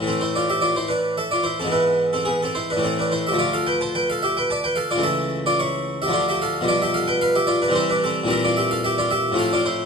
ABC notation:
X:1
M:3/4
L:1/16
Q:1/4=109
K:Ddor
V:1 name="Harpsichord"
[CA] [Ec] [Fd] [Ge] [Fd] [Ec] [DB]2 [Ae] [Fd] [Ec] [CA] | [EB]3 [CA] [B,^G] [CA] [Ec] [DB] [CA] [DB] [Ec] [=Ge] | [Fd] [Af] [Bg] [ca] [Bg] [Af] [Ge] [Bg] [da] [Bg] [Af] [Fd] | [Ae]3 [Fd] [E^c]3 [Ge] [Fd] [Ge] [Af]2 |
[K:C] [Fd] [Ge] [Af] [Bg] [Bf] [Ge] [Fd] [DB] [Ec] [DB] [CA]2 | [E_B] [Fd] [Ge] [Af] [Ge] [Fd] [Ge]2 [Af] [Fd] [Ec]2 |]
V:2 name="Harpsichord" clef=bass
[A,,E,A,]12 | [^G,,E,B,]8 [A,,E,A,]4 | [D,,F,A,]12 | [^C,,E,A,]8 [D,,D,F,A,]4 |
[K:C] [B,,F,G,]8 [C,E,G,C]4 | [_B,,E,G,C]8 [A,,F,A,C]4 |]